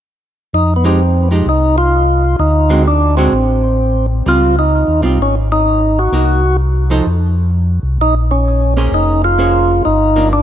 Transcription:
0.53 1.43 F2 medium
0.53 0.74 D#4 medium
0.76 0.85 B3 medium
0.84 0.99 F3 medium
0.84 0.99 G#3 medium
0.84 1.29 C4 medium
0.84 0.99 D#4 medium
0.84 0.99 G4 medium
1.31 1.45 F3 soft
1.31 1.46 G#3 medium
1.31 1.46 D#4 medium
1.31 1.46 G4 medium
1.46 2.36 C2 medium
1.46 1.76 D#4 medium
1.78 2.36 F4 medium
2.39 3.29 D2 medium
2.39 2.83 D#4 medium
2.69 2.85 D3 medium
2.69 2.85 G#3 medium
2.69 2.85 C4 medium
2.69 2.85 F#4 medium
2.88 3.15 D4 medium
3.17 3.32 D3 medium
3.17 3.32 G#3 medium
3.17 4.06 C4 medium
3.17 3.32 C4 medium
3.17 3.32 F#4 medium
3.32 4.22 A1 medium
4.26 4.84 C#2 medium
4.26 4.54 G3 medium
4.26 4.54 C4 medium
4.26 4.55 F4 medium
4.26 4.56 F4 loud
4.59 5.01 D#4 medium
4.88 5.03 D#2 medium
5.02 5.18 C2 medium
5.02 5.18 G3 medium
5.02 5.18 C4 medium
5.02 5.18 F4 medium
5.19 6.09 G#1 medium
5.19 5.35 C#4 medium
5.52 5.99 D#4 loud
5.99 6.57 F#4 medium
6.12 7.02 C2 medium
6.12 6.40 A#3 medium
6.12 6.41 D#4 medium
6.12 6.41 F#4 medium
6.90 7.05 F3 medium
6.90 7.05 D#4 medium
6.90 7.05 A4 medium
6.90 7.05 C5 medium
7.06 7.79 F2 medium
7.83 7.98 C2 medium
7.98 8.88 A#1 medium
7.98 8.15 D#4 loud
8.31 8.74 C#4 medium
8.77 9.36 A#3 medium
8.77 9.37 C#4 medium
8.77 9.37 G#4 medium
8.77 9.37 C5 medium
8.92 9.82 F1 medium
8.92 9.22 D#4 medium
9.24 9.83 F4 loud
9.38 9.86 A#3 medium
9.38 9.86 C#4 medium
9.38 9.86 G#4 medium
9.38 9.86 C5 medium
9.85 10.42 G1 medium
9.85 10.29 D#4 medium
10.16 10.31 F3 medium
10.16 10.31 A#3 medium
10.16 10.31 D4 medium
10.33 10.42 D4 medium

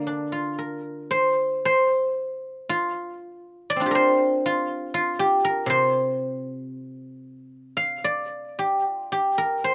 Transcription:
0.00 0.59 C3 soft
0.00 2.67 D3 medium
0.00 1.90 A#3 soft
0.00 0.75 C5 medium
0.00 1.38 D5 medium
0.07 2.16 D4 soft
0.32 2.42 F4 soft
0.59 2.68 A#4 soft
1.11 1.65 C5 medium
1.65 3.63 C5 medium
2.69 3.81 F4 medium
3.70 5.54 D5 loud
3.76 6.76 C4 soft
3.76 6.59 D4 soft
3.81 4.45 F4 medium
3.86 5.19 G4 medium
3.91 5.44 A#4 medium
3.95 5.69 C5 medium
4.46 4.94 F4 medium
4.94 7.47 F4 medium
5.19 7.55 G4 medium
5.45 7.57 A#4 medium
5.66 8.83 C3 medium
5.66 7.68 C5 medium
7.77 9.43 F5 medium
8.04 9.74 D5 medium
8.59 8.90 G4 medium
8.90 9.12 F4 medium
9.12 9.74 G4 medium
9.38 9.74 A#4 medium
9.64 9.74 C5 medium

